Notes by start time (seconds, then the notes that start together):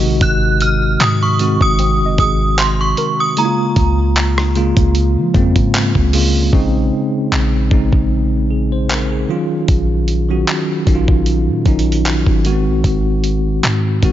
Already playing: C3 D#3 G#3 F#4 D#5
0.03 A#1
0.21 G#1 F#6, kick, closed hi-hat
0.61 F6, closed hi-hat
1.00 G#2 D#6, clap, closed hi-hat
1.23 C#6
1.39 D#3 G#3 C4 F#4, closed hi-hat
1.61 G#1 D#6, kick
1.79 C4, closed hi-hat
2.00 F#1
2.06 D#5
2.18 G#1 G#4 D#6, kick, closed hi-hat
2.58 C6, clap, closed hi-hat
2.81 C#6
2.97 A#4, closed hi-hat
3.20 D#6
3.37 C#3 G#3 A#3 E4 A#5, closed hi-hat
3.45 F4
3.76 C#2, kick, closed hi-hat
4.16 clap, closed hi-hat
4.38 cross-stick
4.55 C#3 G#3 A#3 F4, closed hi-hat
4.77 C#2, kick, closed hi-hat
4.95 closed hi-hat
5.16 F3
5.34 F2 C#3 G#3 A#3 C4, kick, closed hi-hat
5.56 G#2, kick, closed hi-hat
5.74 clap, closed hi-hat
5.95 C#2, kick
6.13 C#3 G#3 A#3 F4, open hi-hat
6.53 A#1 C#3 G#3 C4 D#4, kick
7.32 A#1, clap
7.71 A#1 C#3 G#3 C4 D#4, kick
7.92 A#1, kick
8.51 G#4
8.72 C5
8.90 A#4, clap
9.12 G#4
9.29 D#3 F#3 C#4 F4
9.68 A#1, kick, closed hi-hat
10.08 closed hi-hat
10.29 D#3 F#3 C#4 F#4
10.47 clap, closed hi-hat
10.86 A#1 D#3 F#3 C#4 D#4, kick, closed hi-hat
10.95 F4
11.08 A#1, kick
11.26 closed hi-hat
11.48 A#2
11.65 A#1 D#3 F#3 C#4 D#4, kick, closed hi-hat
11.79 closed hi-hat
11.92 closed hi-hat
12.05 clap, closed hi-hat
12.26 G#1, kick
12.44 D#3 G#3 B3 F#4, closed hi-hat
12.52 C4
12.66 A#1
12.84 G#1, kick, closed hi-hat
13.24 closed hi-hat
13.63 G#2, clap, closed hi-hat
14.02 G#1 D#3 G#3 C4 F#4, kick, closed hi-hat